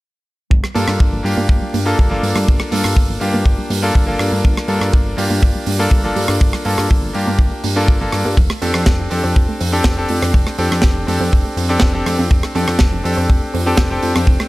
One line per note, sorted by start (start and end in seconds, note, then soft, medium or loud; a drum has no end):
0.50 0.62 G1 medium
0.50 0.60 F3 medium
0.50 kick loud
0.63 0.73 G3 medium
0.63 cross-stick medium
0.74 0.86 G2 loud
0.74 1.21 A#3 medium
0.74 0.82 A#3 loud
0.74 1.21 D4 medium
0.74 1.22 F4 medium
0.74 1.22 A4 medium
0.74 open hi-hat medium
0.88 0.98 G2 medium
0.88 0.92 D4 medium
0.88 cross-stick medium
1.00 1.21 G1 medium
1.00 1.04 F4 medium
1.00 kick loud
1.13 1.19 F3 medium
1.23 1.35 G2 medium
1.23 1.35 G3 medium
1.23 1.83 A#3 medium
1.23 1.83 D4 medium
1.23 1.83 F4 medium
1.23 1.84 G4 medium
1.23 open hi-hat medium
1.37 1.47 G2 medium
1.37 1.47 A#3 loud
1.49 1.60 G1 medium
1.49 1.59 F3 medium
1.49 kick loud
1.62 1.71 G3 medium
1.74 1.94 G2 medium
1.74 1.80 A#3 loud
1.74 open hi-hat medium
1.85 2.07 A#3 medium
1.85 2.07 D4 medium
1.85 1.90 D4 medium
1.85 2.07 F4 medium
1.85 2.07 A4 medium
1.98 2.19 G1 medium
1.98 2.02 F4 medium
1.98 kick medium
2.10 2.17 F3 medium
2.10 2.68 A#3 medium
2.10 2.69 D4 medium
2.10 2.69 F4 medium
2.10 2.70 A4 medium
2.23 2.33 G2 medium
2.23 2.33 G3 medium
2.23 open hi-hat medium
2.35 2.45 G2 loud
2.35 2.45 A#3 medium
2.35 cross-stick medium
2.35 open hi-hat medium
2.47 2.59 G1 medium
2.47 2.57 F3 medium
2.47 kick loud
2.60 2.69 G3 medium
2.60 cross-stick medium
2.71 2.83 G2 loud
2.71 3.18 A#3 medium
2.71 2.79 A#3 loud
2.71 3.18 D4 medium
2.71 3.18 F4 medium
2.71 3.19 A4 medium
2.71 open hi-hat loud
2.84 2.95 G2 medium
2.84 2.89 D4 medium
2.84 cross-stick medium
2.96 3.17 G1 medium
2.96 3.01 F4 medium
2.96 kick loud
3.09 3.15 F3 medium
3.20 3.32 G2 medium
3.20 3.31 G3 medium
3.20 3.79 A#3 medium
3.20 3.80 D4 medium
3.20 3.80 F4 medium
3.20 3.80 G4 medium
3.20 open hi-hat loud
3.34 3.44 G2 medium
3.34 3.43 A#3 medium
3.45 3.56 G1 medium
3.45 3.56 F3 medium
3.45 kick medium
3.58 3.68 G3 medium
3.70 3.91 G2 medium
3.70 3.77 A#3 medium
3.70 open hi-hat loud
3.82 4.04 A#3 medium
3.82 4.04 D4 medium
3.82 3.87 D4 medium
3.82 4.04 F4 medium
3.82 4.04 A4 medium
3.95 4.16 G1 medium
3.95 3.99 F4 medium
3.95 kick loud
4.06 4.14 F3 medium
4.06 4.65 A#3 medium
4.06 4.66 D4 medium
4.06 4.66 F4 medium
4.06 4.66 A4 medium
4.19 4.30 G2 medium
4.19 4.29 G3 medium
4.19 cross-stick medium
4.19 open hi-hat medium
4.32 4.42 G2 loud
4.32 4.41 A#3 loud
4.44 4.55 G1 medium
4.44 4.54 F3 medium
4.44 kick loud
4.57 4.66 G3 medium
4.57 cross-stick medium
4.68 4.79 G2 loud
4.68 5.15 A#3 medium
4.68 4.75 A#3 loud
4.68 5.15 D4 medium
4.68 5.15 F4 medium
4.68 5.15 A4 medium
4.68 open hi-hat medium
4.81 4.91 G2 medium
4.81 4.85 D4 medium
4.81 cross-stick medium
4.93 5.14 G1 medium
4.93 4.97 F4 medium
4.93 kick loud
5.06 5.12 F3 medium
5.17 5.29 G2 medium
5.17 5.28 G3 medium
5.17 5.76 A#3 medium
5.17 5.76 D4 medium
5.17 5.77 F4 medium
5.17 5.77 G4 medium
5.17 open hi-hat loud
5.30 5.40 G2 medium
5.30 5.40 A#3 loud
5.42 5.53 G1 medium
5.42 5.52 F3 medium
5.42 kick loud
5.55 5.64 G3 medium
5.66 5.88 G2 medium
5.66 5.74 A#3 medium
5.66 open hi-hat loud
5.79 6.00 A#3 medium
5.79 6.00 D4 medium
5.79 5.83 D4 medium
5.79 6.01 F4 medium
5.79 6.01 A4 medium
5.91 6.12 G1 medium
5.91 5.96 F4 medium
5.91 kick loud
6.03 6.11 F3 medium
6.03 6.62 A#3 medium
6.03 6.62 D4 medium
6.03 6.63 F4 medium
6.03 6.63 A4 medium
6.16 6.27 G2 medium
6.16 6.26 G3 medium
6.16 open hi-hat loud
6.28 6.39 G2 medium
6.28 6.38 A#3 loud
6.28 cross-stick medium
6.28 open hi-hat medium
6.40 6.52 G1 medium
6.40 6.51 F3 medium
6.40 kick loud
6.53 6.63 G3 medium
6.53 cross-stick medium
6.65 6.76 G2 loud
6.65 7.11 A#3 medium
6.65 6.72 A#3 loud
6.65 7.12 D4 medium
6.65 7.12 F4 medium
6.65 7.12 A4 medium
6.65 open hi-hat loud
6.78 6.88 G2 medium
6.78 6.82 D4 medium
6.78 cross-stick medium
6.90 7.11 G1 medium
6.90 6.94 F4 medium
6.90 kick loud
7.03 7.09 F3 medium
7.13 7.25 G2 medium
7.13 7.25 G3 medium
7.13 7.73 A#3 medium
7.13 7.73 D4 medium
7.13 7.74 F4 medium
7.13 7.74 G4 medium
7.13 open hi-hat loud
7.27 7.37 G2 medium
7.27 7.37 A#3 loud
7.39 7.50 G1 medium
7.39 7.49 F3 medium
7.39 kick loud
7.52 7.61 G3 medium
7.64 7.90 G2 medium
7.64 7.70 A#3 loud
7.64 open hi-hat loud
7.76 7.97 A#3 medium
7.76 7.97 D4 medium
7.76 7.80 D4 medium
7.76 7.97 F4 medium
7.76 7.98 A4 medium
7.88 8.09 G1 medium
7.88 7.92 F4 medium
7.88 kick loud
8.01 8.07 F3 medium
8.01 8.36 A#3 medium
8.01 8.36 D4 medium
8.01 8.36 F4 medium
8.01 8.36 A4 medium
8.12 8.24 G2 medium
8.12 8.23 G3 medium
8.12 cross-stick medium
8.12 open hi-hat loud
8.25 8.36 G2 medium
8.25 8.35 A#3 loud
8.37 8.48 F1 medium
8.37 8.47 F3 medium
8.37 kick loud
8.50 8.59 A3 medium
8.50 cross-stick medium
8.62 8.73 F2 loud
8.62 9.08 C4 medium
8.62 8.69 C4 loud
8.62 9.08 D4 medium
8.62 9.08 G4 medium
8.62 9.09 A4 medium
8.62 open hi-hat loud
8.74 8.85 F2 medium
8.74 8.78 D4 medium
8.74 cross-stick medium
8.86 9.07 F1 medium
8.86 8.91 F4 medium
8.86 kick loud
8.86 snare loud
8.99 9.06 F3 medium
9.10 9.22 F2 medium
9.10 9.21 A3 medium
9.10 9.70 C4 medium
9.10 9.70 D4 medium
9.10 9.70 G4 medium
9.10 9.71 A4 medium
9.10 open hi-hat loud
9.24 9.34 F2 medium
9.24 9.33 C4 loud
9.36 9.47 F1 medium
9.36 9.46 F3 medium
9.36 kick loud
9.49 9.58 A3 medium
9.60 9.81 F2 medium
9.60 9.67 C4 loud
9.60 open hi-hat loud
9.72 9.94 C4 medium
9.72 9.94 D4 medium
9.72 9.77 D4 medium
9.72 9.94 G4 medium
9.72 9.94 A4 medium
9.84 10.06 F1 medium
9.84 9.89 F4 medium
9.84 kick loud
9.84 snare loud
9.97 10.04 F3 medium
9.97 10.55 C4 medium
9.97 10.56 D4 medium
9.97 10.56 G4 medium
9.97 10.56 A4 medium
10.09 10.20 F2 medium
10.09 10.20 A3 medium
10.09 open hi-hat loud
10.22 10.32 F2 medium
10.22 10.32 C4 loud
10.22 cross-stick medium
10.22 open hi-hat medium
10.34 10.45 F1 medium
10.34 10.44 F3 medium
10.34 kick loud
10.47 10.56 A3 medium
10.47 cross-stick medium
10.58 10.69 F2 loud
10.58 11.05 C4 medium
10.58 10.65 C4 loud
10.58 11.05 D4 medium
10.58 11.05 G4 medium
10.58 11.05 A4 medium
10.58 open hi-hat medium
10.71 10.81 F2 medium
10.71 10.75 D4 medium
10.71 cross-stick medium
10.82 11.04 F1 medium
10.82 10.87 F4 medium
10.82 kick loud
10.82 snare loud
10.96 11.02 F3 medium
11.07 11.19 F2 medium
11.07 11.18 A3 medium
11.07 11.66 C4 medium
11.07 11.67 D4 medium
11.07 11.67 G4 medium
11.07 11.67 A4 medium
11.07 open hi-hat loud
11.20 11.30 F2 medium
11.20 11.30 C4 loud
11.32 11.43 F1 medium
11.32 11.42 F3 medium
11.32 kick medium
11.45 11.54 A3 medium
11.57 11.78 F2 medium
11.57 11.64 C4 medium
11.57 open hi-hat loud
11.69 11.90 C4 medium
11.69 11.91 D4 medium
11.69 11.74 D4 medium
11.69 11.91 G4 medium
11.69 11.91 A4 medium
11.80 12.03 F1 medium
11.80 11.86 F4 medium
11.80 kick loud
11.80 snare loud
11.93 12.01 F3 medium
11.93 12.52 C4 medium
11.93 12.52 D4 medium
11.93 12.53 G4 medium
11.93 12.53 A4 medium
12.06 12.17 F2 medium
12.06 12.16 A3 medium
12.06 cross-stick medium
12.06 open hi-hat loud
12.19 12.29 F2 loud
12.19 12.28 C4 loud
12.30 12.42 F1 medium
12.30 12.41 F3 medium
12.30 kick loud
12.43 12.53 A3 medium
12.43 cross-stick medium
12.55 12.66 F2 loud
12.55 13.02 C4 medium
12.55 12.62 C4 loud
12.55 13.02 D4 medium
12.55 13.02 G4 medium
12.55 13.02 A4 medium
12.55 open hi-hat medium
12.68 12.78 F2 medium
12.68 12.72 D4 medium
12.68 cross-stick medium
12.79 13.01 F1 medium
12.79 12.84 F4 medium
12.79 kick loud
12.79 snare loud
12.92 12.99 F3 medium
13.04 13.15 F2 medium
13.04 13.14 A3 medium
13.04 13.63 C4 medium
13.04 13.63 D4 medium
13.04 13.64 G4 medium
13.04 13.64 A4 medium
13.04 open hi-hat medium
13.17 13.27 F2 medium
13.17 13.27 C4 loud
13.29 13.40 F1 medium
13.29 13.39 F3 medium
13.29 kick medium
13.42 13.51 A3 medium
13.54 13.75 F2 medium
13.54 13.60 C4 loud
13.54 open hi-hat loud
13.66 13.87 C4 medium
13.66 13.70 D4 medium
13.66 13.87 D4 medium
13.66 13.87 G4 medium
13.66 13.88 A4 medium
13.77 13.99 F1 medium
13.77 13.82 F4 medium
13.77 kick loud
13.77 snare loud
13.90 13.97 F3 medium
13.90 14.48 C4 medium
13.90 14.48 D4 medium
13.90 14.48 G4 medium
13.90 14.48 A4 medium
14.02 14.14 F2 medium
14.02 14.13 A3 medium
14.02 open hi-hat medium
14.15 14.26 F2 loud
14.15 14.25 C4 medium
14.15 cross-stick medium
14.15 open hi-hat medium
14.27 14.38 F1 medium
14.27 14.38 F3 medium
14.27 kick loud
14.40 14.48 A3 medium
14.40 cross-stick medium